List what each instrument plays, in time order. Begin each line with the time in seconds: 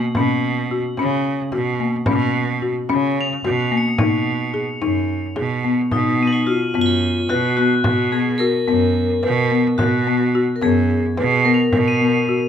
Already playing: crotales F#7 A#7
0.15 cello B2, marimba C#4, frame drum
0.69 marimba F#4, frame drum
0.97 cello C#3, marimba C#4, frame drum
1.52 cello B2, marimba F#4, frame drum
1.79 marimba A#3, frame drum
2.06 cello B2, marimba C#4, frame drum
2.62 marimba F#4, frame drum
2.89 cello C#3, marimba C#4, frame drum
3.21 crotales F7
3.44 cello B2, marimba F#4, frame drum
3.71 marimba A#3, frame drum
3.77 crotales C#7
3.98 cello B2, marimba D#4, frame drum
4.54 marimba G#4, frame drum
4.82 cello F#2, marimba D#4, frame drum
5.36 cello B2, marimba G#4, frame drum
5.64 marimba B3, frame drum
5.91 cello B2, vibraphone D#4, frame drum
6.20 marimba B3, crotales D#7
6.27 crotales F#7
6.33 crotales G#7
6.47 vibraphone F4, marimba F#4
6.74 cello F#2, marimba B3, frame drum
6.81 crotales G#7
6.86 crotales B7
7.29 cello B2, vibraphone F#4, marimba B4, frame drum
7.57 marimba B3, vibraphone F#4
7.84 cello B2, frame drum
8.12 marimba B3, vibraphone G#4
8.38 marimba F#4, vibraphone A#4, crotales B7
8.68 cello F#2, marimba B3, frame drum
9.23 cello B2, marimba B4, frame drum
9.52 marimba B3
9.78 cello B2, vibraphone F#4, frame drum
10.07 marimba B3
10.35 marimba F#4
10.56 vibraphone A#4
10.62 cello F#2, marimba B3, vibraphone G#4, frame drum
11.17 cello B2, marimba B4, frame drum
11.45 marimba B3, vibraphone A#4
11.54 crotales F7
11.72 cello B2, frame drum
11.88 crotales D#7
12.01 marimba B3, frame drum
12.29 marimba F#4, frame drum